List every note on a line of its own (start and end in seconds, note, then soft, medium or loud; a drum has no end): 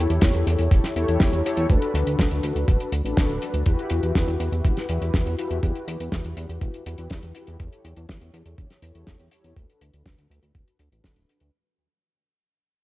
0.00 0.93 E4 medium
0.00 0.93 G4 medium
0.00 0.93 A4 medium
0.00 0.93 C#5 medium
0.10 0.19 E2 medium
0.10 closed hi-hat medium
0.21 0.32 E2 loud
0.21 kick loud
0.21 snare loud
0.21 closed hi-hat medium
0.33 0.44 E2 medium
0.33 closed hi-hat medium
0.47 0.56 E2 loud
0.47 closed hi-hat medium
0.59 0.69 E2 medium
0.59 closed hi-hat medium
0.71 0.81 E1 loud
0.71 kick loud
0.71 closed hi-hat medium
0.84 snare soft
0.84 closed hi-hat medium
0.96 1.05 E2 medium
0.96 1.42 E4 medium
0.96 1.42 G4 medium
0.96 1.42 A4 medium
0.96 1.42 C#5 medium
0.96 closed hi-hat medium
1.08 1.18 E2 medium
1.08 closed hi-hat soft
1.20 1.30 E2 loud
1.20 kick loud
1.20 snare loud
1.20 closed hi-hat medium
1.33 1.42 E2 medium
1.33 closed hi-hat soft
1.45 1.67 E4 medium
1.45 1.67 G4 medium
1.45 1.67 A4 medium
1.45 1.67 C#5 loud
1.45 closed hi-hat loud
1.57 1.67 E2 medium
1.57 closed hi-hat medium
1.70 1.79 D2 loud
1.70 2.90 D4 medium
1.70 2.90 F#4 medium
1.70 2.90 A4 medium
1.70 2.90 B4 medium
1.70 kick loud
1.70 closed hi-hat medium
1.82 closed hi-hat medium
1.94 2.04 D2 medium
1.94 closed hi-hat loud
2.06 2.16 D2 medium
2.06 closed hi-hat medium
2.19 2.28 D2 loud
2.19 kick loud
2.19 snare loud
2.19 closed hi-hat medium
2.31 2.41 D2 medium
2.31 closed hi-hat medium
2.43 2.53 D2 loud
2.43 closed hi-hat medium
2.55 2.65 D2 medium
2.55 closed hi-hat medium
2.68 2.77 D1 loud
2.68 kick loud
2.68 closed hi-hat medium
2.80 closed hi-hat soft
2.92 3.02 D2 medium
2.92 closed hi-hat medium
3.04 3.14 A1 medium
3.04 3.63 D4 medium
3.04 3.63 F#4 medium
3.04 3.63 A4 medium
3.04 3.63 B4 medium
3.04 closed hi-hat medium
3.17 3.27 D1 loud
3.17 kick loud
3.17 snare loud
3.17 closed hi-hat medium
3.29 3.39 D1 medium
3.29 closed hi-hat soft
3.42 closed hi-hat medium
3.54 3.63 D2 medium
3.54 closed hi-hat medium
3.66 3.76 E2 medium
3.66 4.87 E4 medium
3.66 4.87 F#4 medium
3.66 4.87 G4 medium
3.66 4.87 B4 medium
3.66 kick loud
3.66 closed hi-hat medium
3.79 closed hi-hat soft
3.90 4.00 E2 medium
3.90 closed hi-hat loud
4.03 4.13 E2 medium
4.03 closed hi-hat medium
4.15 4.25 E2 loud
4.15 kick loud
4.15 snare loud
4.15 closed hi-hat medium
4.27 4.37 E2 medium
4.27 closed hi-hat medium
4.40 4.49 E2 loud
4.40 closed hi-hat medium
4.52 4.62 E2 medium
4.52 closed hi-hat medium
4.65 4.74 E1 loud
4.65 kick loud
4.65 closed hi-hat medium
4.77 snare soft
4.77 closed hi-hat soft
4.89 4.99 E2 medium
4.89 5.35 E4 medium
4.89 5.35 F#4 medium
4.89 5.35 G4 medium
4.89 5.35 B4 medium
4.89 closed hi-hat medium
5.01 5.11 E2 medium
5.01 closed hi-hat medium
5.14 5.23 E2 loud
5.14 kick loud
5.14 snare loud
5.14 closed hi-hat medium
5.26 5.36 E2 medium
5.26 closed hi-hat medium
5.38 5.60 E4 medium
5.38 5.60 F#4 medium
5.38 5.60 G4 medium
5.38 5.60 B4 loud
5.38 closed hi-hat medium
5.51 5.60 E2 medium
5.51 closed hi-hat soft
5.63 5.73 E2 medium
5.63 6.84 E4 medium
5.63 6.84 F#4 medium
5.63 6.84 G4 medium
5.63 6.84 B4 medium
5.63 kick loud
5.63 closed hi-hat medium
5.75 closed hi-hat medium
5.88 5.97 E2 loud
5.88 closed hi-hat loud
6.00 6.09 E2 medium
6.00 closed hi-hat medium
6.12 6.22 E2 loud
6.12 kick loud
6.12 snare loud
6.12 closed hi-hat medium
6.25 6.34 E2 medium
6.25 closed hi-hat medium
6.37 6.46 E2 loud
6.37 closed hi-hat medium
6.49 6.59 E2 medium
6.49 closed hi-hat medium
6.61 6.71 E1 loud
6.61 kick loud
6.61 closed hi-hat medium
6.74 closed hi-hat medium
6.86 6.96 E2 medium
6.86 7.32 E4 medium
6.86 7.32 F#4 medium
6.86 7.32 G4 medium
6.86 7.32 B4 medium
6.86 closed hi-hat loud
6.98 7.08 E2 medium
6.98 closed hi-hat medium
7.10 7.20 E2 medium
7.10 kick loud
7.10 snare loud
7.10 closed hi-hat medium
7.23 7.33 E2 medium
7.23 closed hi-hat medium
7.35 7.57 E4 medium
7.35 7.57 F#4 medium
7.35 7.57 G4 medium
7.35 7.57 B4 loud
7.35 closed hi-hat loud
7.47 7.57 E2 medium
7.47 closed hi-hat medium
7.60 7.69 E2 medium
7.60 8.80 E4 medium
7.60 8.80 G4 medium
7.60 8.80 A4 medium
7.60 8.80 C#5 medium
7.60 kick loud
7.60 closed hi-hat medium
7.73 closed hi-hat medium
7.84 7.94 E2 medium
7.84 closed hi-hat medium
7.96 8.06 E2 medium
7.96 closed hi-hat medium
8.09 8.18 E2 medium
8.09 kick loud
8.09 snare loud
8.09 closed hi-hat medium
8.21 8.31 E2 medium
8.21 closed hi-hat medium
8.33 8.43 E2 loud
8.33 closed hi-hat medium
8.46 8.55 E2 medium
8.46 closed hi-hat medium
8.58 8.68 E1 loud
8.58 kick loud
8.58 closed hi-hat medium
8.70 snare soft
8.70 closed hi-hat medium
8.82 8.92 E2 medium
8.82 9.29 E4 medium
8.82 9.29 G4 medium
8.82 9.29 A4 medium
8.82 9.29 C#5 medium
8.82 closed hi-hat loud
8.95 9.04 E2 medium
8.95 closed hi-hat soft
9.07 9.17 E2 loud
9.07 kick loud
9.07 snare loud
9.07 closed hi-hat medium
9.19 9.29 E2 medium
9.19 closed hi-hat soft
9.31 9.54 E4 medium
9.31 9.54 G4 medium
9.31 9.54 A4 medium
9.31 9.54 C#5 loud
9.31 closed hi-hat loud
9.44 9.54 E2 medium
9.44 closed hi-hat medium
9.56 9.66 D2 medium
9.56 10.77 D4 medium
9.56 10.77 F#4 medium
9.56 10.77 A4 medium
9.56 10.77 B4 medium
9.56 kick loud
9.56 closed hi-hat medium
9.70 closed hi-hat medium
9.81 9.91 D2 medium
9.81 closed hi-hat loud
9.93 10.03 D2 medium
9.93 closed hi-hat medium
10.06 10.15 D2 loud
10.06 kick loud
10.06 snare loud
10.06 closed hi-hat medium
10.18 10.27 D2 medium
10.18 closed hi-hat medium
10.30 10.40 D2 loud
10.30 closed hi-hat medium
10.43 10.52 D2 medium
10.43 closed hi-hat medium
10.55 10.64 D1 loud
10.55 kick loud
10.55 closed hi-hat medium
10.68 closed hi-hat medium
10.79 10.89 D2 medium
10.79 closed hi-hat loud
10.92 11.01 A1 medium
10.92 11.50 D4 medium
10.92 11.50 F#4 medium
10.92 11.50 A4 medium
10.92 11.50 B4 medium
10.92 closed hi-hat medium
11.04 11.14 D1 medium
11.04 kick loud
11.04 snare loud
11.04 closed hi-hat medium
11.16 11.26 D1 medium
11.16 closed hi-hat medium
11.29 closed hi-hat loud
11.40 11.50 D2 medium
11.40 closed hi-hat medium